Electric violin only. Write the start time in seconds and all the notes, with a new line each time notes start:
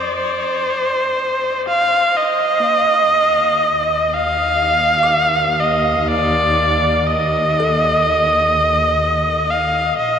Already playing: C5
0.16 C5
1.68 F5
2.17 D#5
4.14 F5
5.60 D#5
6.08 D5
7.07 D#5
9.50 F5
9.97 D#5